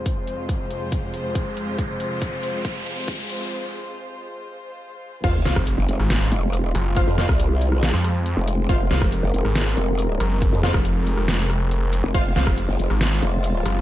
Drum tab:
CC |----------------|----------------|----------------|x---------------|
HH |x-x-x-x-x-x-x-x-|x-x-x-x-x-x-x-x-|----------------|x-x-x-o-x-x-x-o-|
SD |----------------|----------------|----------------|--or---ro-----r-|
BD |o---o---o---o---|o---o---o---o---|----------------|o--o------------|

CC |----------------|----------------|----------------|x---x---x---x---|
HH |x-x-x-o-x-x-x-o-|x-x-x-o-x-x-x-o-|x-x-x-o-x-x-x-o-|x-x-x-o-x-x-x-o-|
SD |--or---ro-r-----|--or---ro-----r-|--or---ro-r-----|--or---ro-----r-|
BD |o--o------------|o--o------------|o--o------------|o--o------------|